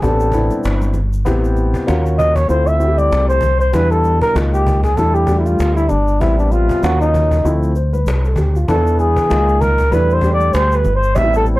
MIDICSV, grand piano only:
0, 0, Header, 1, 2, 480
1, 0, Start_track
1, 0, Key_signature, 0, "minor"
1, 0, Tempo, 618557
1, 979, Time_signature, 4, 2, 24, 8
1, 8999, End_track
2, 0, Start_track
2, 0, Title_t, "Grand piano"
2, 0, Program_c, 0, 0
2, 16, Note_on_c, 0, 59, 77
2, 20, Note_on_c, 0, 60, 63
2, 24, Note_on_c, 0, 62, 67
2, 29, Note_on_c, 0, 67, 78
2, 217, Note_off_c, 0, 59, 0
2, 219, Note_off_c, 0, 60, 0
2, 221, Note_off_c, 0, 62, 0
2, 224, Note_off_c, 0, 67, 0
2, 257, Note_on_c, 0, 59, 71
2, 260, Note_on_c, 0, 60, 72
2, 263, Note_on_c, 0, 62, 70
2, 270, Note_on_c, 0, 64, 79
2, 726, Note_off_c, 0, 59, 0
2, 727, Note_off_c, 0, 60, 0
2, 729, Note_off_c, 0, 62, 0
2, 732, Note_off_c, 0, 64, 0
2, 970, Note_on_c, 0, 59, 81
2, 973, Note_on_c, 0, 60, 77
2, 979, Note_on_c, 0, 64, 79
2, 983, Note_on_c, 0, 67, 86
2, 1447, Note_on_c, 0, 58, 76
2, 1452, Note_on_c, 0, 61, 74
2, 1454, Note_off_c, 0, 59, 0
2, 1456, Note_off_c, 0, 60, 0
2, 1457, Note_on_c, 0, 65, 77
2, 1459, Note_off_c, 0, 64, 0
2, 1461, Note_off_c, 0, 67, 0
2, 1462, Note_on_c, 0, 66, 92
2, 1853, Note_off_c, 0, 58, 0
2, 1855, Note_off_c, 0, 61, 0
2, 1858, Note_off_c, 0, 65, 0
2, 1860, Note_off_c, 0, 66, 0
2, 1923, Note_on_c, 0, 57, 73
2, 1928, Note_on_c, 0, 60, 68
2, 1932, Note_on_c, 0, 64, 65
2, 1935, Note_on_c, 0, 65, 79
2, 2131, Note_off_c, 0, 57, 0
2, 2133, Note_off_c, 0, 60, 0
2, 2135, Note_off_c, 0, 64, 0
2, 2137, Note_off_c, 0, 65, 0
2, 2166, Note_on_c, 0, 57, 68
2, 2170, Note_on_c, 0, 60, 71
2, 2173, Note_on_c, 0, 64, 68
2, 2178, Note_on_c, 0, 66, 62
2, 2229, Note_on_c, 0, 67, 80
2, 2237, Note_off_c, 0, 66, 0
2, 2640, Note_off_c, 0, 57, 0
2, 2642, Note_off_c, 0, 60, 0
2, 2644, Note_off_c, 0, 64, 0
2, 2672, Note_off_c, 0, 67, 0
2, 2889, Note_on_c, 0, 55, 70
2, 2896, Note_on_c, 0, 59, 63
2, 2898, Note_on_c, 0, 62, 66
2, 2903, Note_on_c, 0, 64, 76
2, 3371, Note_on_c, 0, 56, 70
2, 3374, Note_off_c, 0, 55, 0
2, 3376, Note_on_c, 0, 58, 63
2, 3377, Note_off_c, 0, 59, 0
2, 3379, Note_off_c, 0, 62, 0
2, 3379, Note_on_c, 0, 63, 65
2, 3381, Note_off_c, 0, 64, 0
2, 3383, Note_on_c, 0, 65, 78
2, 3775, Note_off_c, 0, 56, 0
2, 3777, Note_off_c, 0, 58, 0
2, 3778, Note_off_c, 0, 63, 0
2, 3781, Note_off_c, 0, 65, 0
2, 3855, Note_on_c, 0, 55, 69
2, 3860, Note_on_c, 0, 57, 68
2, 3863, Note_on_c, 0, 62, 67
2, 3869, Note_on_c, 0, 64, 79
2, 4057, Note_off_c, 0, 55, 0
2, 4059, Note_off_c, 0, 57, 0
2, 4061, Note_off_c, 0, 62, 0
2, 4064, Note_off_c, 0, 64, 0
2, 4090, Note_on_c, 0, 55, 74
2, 4095, Note_on_c, 0, 57, 68
2, 4100, Note_on_c, 0, 62, 66
2, 4105, Note_on_c, 0, 66, 62
2, 4154, Note_on_c, 0, 67, 77
2, 4161, Note_off_c, 0, 66, 0
2, 4562, Note_off_c, 0, 55, 0
2, 4565, Note_off_c, 0, 57, 0
2, 4567, Note_off_c, 0, 62, 0
2, 4595, Note_off_c, 0, 67, 0
2, 4812, Note_on_c, 0, 55, 74
2, 4816, Note_on_c, 0, 59, 64
2, 4822, Note_on_c, 0, 60, 69
2, 4824, Note_on_c, 0, 76, 76
2, 5291, Note_on_c, 0, 54, 68
2, 5296, Note_off_c, 0, 55, 0
2, 5296, Note_on_c, 0, 58, 65
2, 5298, Note_off_c, 0, 59, 0
2, 5301, Note_off_c, 0, 60, 0
2, 5301, Note_off_c, 0, 76, 0
2, 5302, Note_on_c, 0, 61, 63
2, 5304, Note_on_c, 0, 65, 77
2, 5695, Note_off_c, 0, 54, 0
2, 5697, Note_off_c, 0, 58, 0
2, 5700, Note_off_c, 0, 61, 0
2, 5701, Note_off_c, 0, 65, 0
2, 5773, Note_on_c, 0, 53, 71
2, 5777, Note_on_c, 0, 57, 73
2, 5782, Note_on_c, 0, 60, 64
2, 5786, Note_on_c, 0, 64, 83
2, 5976, Note_off_c, 0, 53, 0
2, 5978, Note_off_c, 0, 57, 0
2, 5980, Note_off_c, 0, 60, 0
2, 5982, Note_off_c, 0, 64, 0
2, 6022, Note_on_c, 0, 72, 62
2, 6153, Note_off_c, 0, 72, 0
2, 6155, Note_on_c, 0, 71, 71
2, 6385, Note_off_c, 0, 71, 0
2, 6399, Note_on_c, 0, 69, 64
2, 6494, Note_off_c, 0, 69, 0
2, 6498, Note_on_c, 0, 67, 65
2, 6631, Note_off_c, 0, 67, 0
2, 6643, Note_on_c, 0, 65, 64
2, 6736, Note_on_c, 0, 53, 58
2, 6737, Note_on_c, 0, 59, 67
2, 6744, Note_on_c, 0, 62, 66
2, 6747, Note_on_c, 0, 64, 76
2, 6785, Note_on_c, 0, 52, 73
2, 6796, Note_off_c, 0, 53, 0
2, 6869, Note_off_c, 0, 65, 0
2, 7213, Note_on_c, 0, 56, 73
2, 7217, Note_on_c, 0, 58, 66
2, 7218, Note_off_c, 0, 59, 0
2, 7221, Note_off_c, 0, 62, 0
2, 7221, Note_on_c, 0, 63, 66
2, 7223, Note_off_c, 0, 64, 0
2, 7225, Note_on_c, 0, 65, 80
2, 7242, Note_off_c, 0, 52, 0
2, 7616, Note_off_c, 0, 56, 0
2, 7618, Note_off_c, 0, 58, 0
2, 7620, Note_off_c, 0, 63, 0
2, 7622, Note_off_c, 0, 65, 0
2, 7690, Note_on_c, 0, 55, 73
2, 7695, Note_on_c, 0, 57, 66
2, 7701, Note_on_c, 0, 62, 65
2, 7706, Note_on_c, 0, 64, 84
2, 7894, Note_off_c, 0, 55, 0
2, 7897, Note_off_c, 0, 57, 0
2, 7900, Note_off_c, 0, 62, 0
2, 7902, Note_off_c, 0, 64, 0
2, 7932, Note_on_c, 0, 55, 76
2, 7937, Note_on_c, 0, 57, 70
2, 7942, Note_on_c, 0, 62, 68
2, 7944, Note_on_c, 0, 67, 81
2, 8403, Note_off_c, 0, 55, 0
2, 8406, Note_off_c, 0, 57, 0
2, 8408, Note_off_c, 0, 62, 0
2, 8409, Note_off_c, 0, 67, 0
2, 8654, Note_on_c, 0, 55, 71
2, 8658, Note_on_c, 0, 59, 66
2, 8664, Note_on_c, 0, 60, 67
2, 8668, Note_on_c, 0, 63, 60
2, 8720, Note_on_c, 0, 64, 80
2, 8722, Note_off_c, 0, 63, 0
2, 8999, Note_off_c, 0, 55, 0
2, 8999, Note_off_c, 0, 59, 0
2, 8999, Note_off_c, 0, 60, 0
2, 8999, Note_off_c, 0, 64, 0
2, 8999, End_track
0, 0, End_of_file